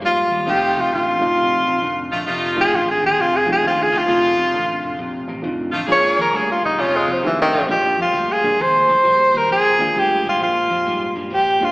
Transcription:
0.02 G#2 A#2 G3 F4
0.31 D#2 A#2 G3
0.46 F1 F2 C3 F3 A3 C4 D#4 F4 G4
0.77 C2 F2 C3 F4
0.92 A1 F2 D3 F4
1.20 F1 F2 D3 F3 A3 C4 D#4 F4
1.37 A#1 F2 C3
1.66 A1 F2 C3
1.82 F1 F2 D3
2.11 A#1 F2 D3 A3 D#4 F4
2.27 F1 F2 C3 A3 D#4 F4
2.56 A#1 F2 C3 F3 A3 C4 D#4 F4
2.61 G#4
2.72 A1 F2 D3 F4
2.91 G#4
3.01 D#2 F2 D3
3.06 G#4
3.18 F1 F2 C3 F4
3.36 G#4
3.46 C2 F2 C3 F3 A3 C4 D#4 F4
3.52 G#4
3.62 D#2 F2 D3
3.67 F4
3.82 G#4
3.92 D2 F2 D3 A3 D#4 F4
3.98 F4
4.07 F1 F2 C3 F3 A3 C4 D#4 F4
4.37 C2 F2 C3
4.54 A1 F2 D3
4.83 F1 F2 D3
4.99 A#1 F2 C3
5.27 A1 F2 C3
5.42 F1 F2 D3 F3 A3 C4 D#4 F4
5.72 A1 F2 D3 A3 D#4 F4
5.87 A#1 A#2 F3 G#3 A#3 D4 F4 G#4
5.92 C#5
6.18 D#2 A#2 F3 A#4
6.33 D2 A#2 G3 G#4
6.52 F4
6.63 E1 A#2 G3 D#4
6.78 F1 F2 C3 A3 C#4 D#4 F4
6.96 G#3
7.07 C2 F2 C3
7.11 F3
7.22 D#2 F2 D3 F3 A3 C4 D#4 G4
7.26 E3
7.42 D#3
7.52 A1 F2 D3 A3 D#4 F4
7.68 A#1 A#2 F3 G#3 A#3 D4 F4 G4
7.98 F2 A#2 F3 F4
8.13 D2 A#2 G3
8.32 G#4
8.43 A#1 A#2 G3 G#3 A#3 D4 G#4
8.59 D#2 A#2 F3 C5
8.89 D2 A#2 F3
9.04 A#1 A#2 G3
9.34 D#2 A#2 G3 A#4
9.50 A#1 A#2 F3 G#4
9.79 D#2 A#2 F3 G#3 A#3 D4 F4
9.95 D2 A#2 G3 G4
10.25 G#1 A#2 G3 F4
10.40 A#1 A#2 F3 F4
10.70 F2 A#2 F3
10.87 G#2 A#2 G3
11.16 G2 A#2 G3
11.30 A#1 A#2 F3 G4
11.61 F2 A#2 F3 G#3 A#3 D4 F4

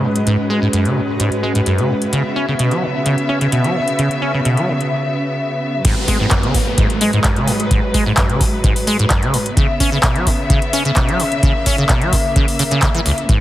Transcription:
Already playing: G#2 F#3 G#3 C#4 F#4 B4 D#5
0.03 G#2
0.16 closed hi-hat
0.27 G#2 G#3, closed hi-hat
0.50 G#3
0.62 G#2
0.73 F#2, closed hi-hat
0.85 C#3, closed hi-hat
0.96 G#2
1.20 G#2, closed hi-hat
1.32 closed hi-hat
1.43 G#3
1.55 G#2, closed hi-hat
1.66 F#2, closed hi-hat
1.78 C#3, closed hi-hat
1.90 G#2
2.02 closed hi-hat
2.13 C#3 B3 E5, closed hi-hat
2.36 C#4
2.44 E5
2.48 C#3
2.59 B2, closed hi-hat
2.71 F#3, closed hi-hat
2.82 C#3
3.06 C#3, closed hi-hat
3.18 closed hi-hat
3.29 C#4
3.41 C#3, closed hi-hat
3.52 B2, closed hi-hat
3.64 F#3, closed hi-hat
3.75 C#3
3.88 closed hi-hat
3.99 C#3, closed hi-hat
4.11 closed hi-hat
4.22 C#4
4.34 C#3
4.45 B2, closed hi-hat
4.57 F#3, closed hi-hat
4.68 C#3
4.81 closed hi-hat
5.85 G#2 F#3 G#3 B4, kick, closed hi-hat, crash, downlifter
6.08 G#3 D#5, kick, open hi-hat
6.20 G#2
6.31 F#2, kick, clap, closed hi-hat
6.43 C#3, closed hi-hat
6.54 G#2, kick, open hi-hat
6.78 G#2, kick, closed hi-hat
6.90 closed hi-hat
7.01 G#3, open hi-hat
7.13 G#2, closed hi-hat
7.24 F#2, kick, clap, closed hi-hat
7.36 C#3, closed hi-hat
7.48 G#2, open hi-hat
7.60 closed hi-hat
7.71 G#2, kick, closed hi-hat
7.94 G#3, kick, open hi-hat
8.06 G#2
8.17 F#2, kick, clap, closed hi-hat
8.29 C#3, closed hi-hat
8.41 G#2, kick, open hi-hat
8.64 G#2, kick, closed hi-hat
8.76 open hi-hat
8.87 G#3, open hi-hat
8.99 G#2, closed hi-hat
9.10 F#2, kick, clap, closed hi-hat
9.22 C#3, closed hi-hat
9.33 G#2, open hi-hat
9.46 closed hi-hat
9.57 C#3 B3 E5, kick, closed hi-hat
9.80 C#4 E5, kick, open hi-hat
9.92 C#3
10.03 B2, kick, clap, closed hi-hat
10.15 F#3, closed hi-hat
10.27 C#3, kick, open hi-hat
10.50 C#3, kick, closed hi-hat
10.62 closed hi-hat
10.73 C#4, open hi-hat
10.85 C#3, closed hi-hat
10.96 B2, kick, clap, closed hi-hat
11.09 F#3, closed hi-hat
11.20 C#3, open hi-hat
11.32 closed hi-hat
11.43 C#3 A#3, kick, closed hi-hat
11.66 C#4, kick, open hi-hat
11.78 C#3
11.89 B2, kick, clap, closed hi-hat
12.01 F#3, closed hi-hat
12.13 C#3, kick, open hi-hat
12.36 C#3, kick, closed hi-hat
12.48 open hi-hat
12.59 C#3, open hi-hat
12.71 C#3, closed hi-hat
12.82 kick, clap, closed hi-hat
12.95 E3, closed hi-hat
13.06 C#2, open hi-hat
13.18 closed hi-hat
13.29 G#2 F#3 G#3 B4, kick, closed hi-hat

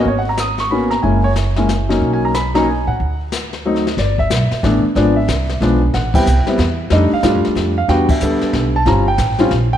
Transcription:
0.05 G#1 C#5, brush sweep, kick
0.18 F#5
0.29 A#5
0.37 D#6, snare, hi-hat pedal
0.58 C#6, snare
0.71 A#3 B3 C#4 F#4 B5
0.91 A#5, snare
1.02 F#1 G#3 A#3 C#4 E4 G#5, brush sweep, kick
1.24 C#5
1.36 snare, hi-hat pedal
1.56 G#3 A#3 C#4 E4, snare
1.69 snare, hi-hat pedal
1.89 F#3 A#3 C#4 D#4, snare
2.01 B1, brush sweep, kick
2.13 G#5
2.25 A#5
2.34 B5, snare, hi-hat pedal
2.54 F#3 A#3 C#4 D#4 A#5, snare
2.68 G#5
2.87 A2 F#5
3.00 D2, brush sweep, kick
3.32 snare, hi-hat pedal
3.53 snare
3.65 F#3 A3 C4 D#4
3.76 snare
3.87 snare
3.97 G1 D5, brush sweep, kick, snare
4.18 E5, kick
4.30 B1, kick, snare, hi-hat pedal
4.51 muted upright bass stroke, snare
4.63 A1 E3 A3 B3 D4, kick, snare
4.84 muted upright bass stroke
4.95 G#1 F3 G#3 B3 D4 D5, brush sweep, kick, snare
5.16 E5
5.28 C2, kick, snare, hi-hat pedal
5.49 snare
5.60 B1 F3 G#3 B3 D4, kick, snare
5.93 A1 F#5, brush sweep, kick, snare
6.14 G3 B3 C4 E4 G5, kick, crash
6.26 C2, hi-hat pedal
6.46 G3 B3 C4 E4, muted upright bass stroke, snare
6.58 E2, kick, snare
6.90 F2 G3 A3 D4 D#4 D#5, brush sweep, kick, snare
7.12 F5, muted upright bass stroke
7.23 G2 G3 A3 D4 F4, kick, snare, hi-hat pedal
7.35 F2
7.45 D#2, snare
7.55 F2, kick, snare
7.78 F5
7.88 E2 G3 B3 D4 F#4 G5, brush sweep, kick, snare
8.09 E5, kick, crash
8.20 D2 G3 B3 D4 A4, hi-hat pedal
8.41 muted upright bass stroke, snare
8.53 B1, kick, snare
8.76 A5
8.85 G1 G3 C4 C#4 F4 A#5, brush sweep, kick, snare
9.08 G5
9.18 A1, kick, snare, hi-hat pedal
9.38 G3 C4 C#4 F4, snare
9.51 A#1, kick, snare
9.73 G5

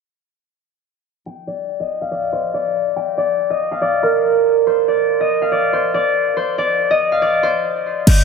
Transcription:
1.26 G5
1.47 D5
1.80 D#5
2.01 F5
2.11 D5
2.33 C5
2.54 D5
2.96 G5
3.18 D5
3.50 D#5
3.72 F5
3.82 D5
4.03 A#4
4.67 C5
4.88 D5
5.20 D#5
5.42 F5
5.52 D5
5.73 C5
5.94 D5
6.37 C5
6.58 D5
6.91 D#5
7.12 F5
7.22 D5
7.43 C5
8.07 G1 G6, closed hi-hat, crash

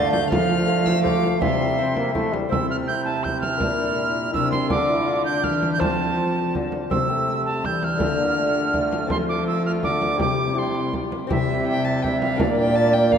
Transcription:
Already playing: D3 A3 F4 D5 F5 A6
0.13 G6, frame drum
0.30 F3 A3 F5 F6, frame drum
0.67 A3 F4 C5
0.85 E6, frame drum
1.04 A3 F4 C5 D6, frame drum
1.23 frame drum
1.41 C3 G3 E5 C6, frame drum
1.78 C4 E4 C5
1.97 A#3, frame drum
2.15 A3 E4 C5, frame drum
2.33 G3, frame drum
2.49 C3 C4 E4 A4 C5 E6, frame drum
2.70 F6
2.88 E4 G4 G6
3.05 A5
3.24 E4 G4 G6, frame drum
3.41 F6, frame drum
3.58 A#2 A#3 D4 A#4 D5, frame drum
3.79 A4
3.98 G4
4.34 C3 D4 F4 E6, frame drum
4.52 C6, frame drum
4.68 D3 A3 D4 D5 F5 D6, frame drum
4.89 E4
5.08 F4
5.25 D4 G6
5.44 D3 E3 F6, frame drum
5.63 frame drum
5.73 G6
5.77 F3 A3 F4 C5 A5, frame drum
5.82 C4
6.55 D3, frame drum
6.72 frame drum
6.90 C3 C4 G4 C5 E6, frame drum
7.11 A3
7.46 A5
7.64 E3 G3 G6, frame drum
7.83 F6, frame drum
7.96 D4 F4 A4, frame drum
8.00 D3 A3 F4
8.19 A#3
8.37 A3 A4
8.55 G4
8.74 A3 F4, frame drum
8.93 frame drum
9.06 F3 C4 F4 A4, frame drum
9.11 F3 A3 C6
9.29 D6
9.47 E6
9.66 F6
9.83 D3 D6, frame drum
10.02 frame drum
10.15 C3 C4 E4 G4
10.20 C3 G3 D6, frame drum
10.54 C4 E4 G4 A4
10.58 G3 C6
10.75 G4
10.93 F4, frame drum
11.12 E4, frame drum
11.27 C3 C4 E4 G4 E5, frame drum
11.31 C3 G3 E5
11.67 G5
11.85 A5
12.02 G3 E5 G5, frame drum
12.21 F5, frame drum
12.36 A#2 D4 A#4 D5, frame drum
12.41 A#2 A#3
12.57 G5
12.75 A5
12.93 G5
13.12 F5, frame drum

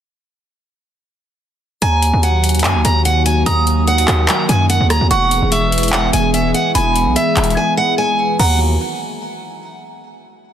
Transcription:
1.82 D#2 D#3 F#3 A#3 F#4 G#5 A#5, closed hi-hat
2.02 closed hi-hat
2.13 D#2
2.23 F#5, closed hi-hat
2.44 closed hi-hat
2.49 closed hi-hat
2.55 closed hi-hat
2.59 closed hi-hat
2.64 F#2 G#5, clap, closed hi-hat
2.75 D#2
2.85 D#2 A#5, closed hi-hat
3.05 F#5, closed hi-hat
3.26 G#5, closed hi-hat
3.46 D#2 A#5 D#6, closed hi-hat
3.67 closed hi-hat
3.88 F#5, closed hi-hat
3.98 closed hi-hat
4.08 D#2, cross-stick, clap, closed hi-hat
4.28 A#5, clap, closed hi-hat
4.49 F#2 G#5, closed hi-hat
4.70 F#5, closed hi-hat
4.80 D#2
4.90 A#5, cross-stick, closed hi-hat
5.01 D#2
5.10 E1 E3 G#3 B3 G#4 F#5 C#6, closed hi-hat
5.31 closed hi-hat
5.42 E1
5.52 E5, closed hi-hat
5.72 closed hi-hat
5.78 closed hi-hat
5.83 closed hi-hat
5.88 closed hi-hat
5.93 F#5, clap
6.13 E1 G#5, closed hi-hat
6.34 E5, closed hi-hat
6.54 F#5, closed hi-hat
6.75 E1 G#5 B5, closed hi-hat
6.96 closed hi-hat
7.07 B1
7.16 E5, closed hi-hat
7.37 E1, clap, closed hi-hat
7.44 closed hi-hat
7.50 closed hi-hat
7.57 G#5
7.77 F#5
7.98 G#5
8.39 D#2 D#3 F#3 A#3 F#4 F#5 A#5, crash

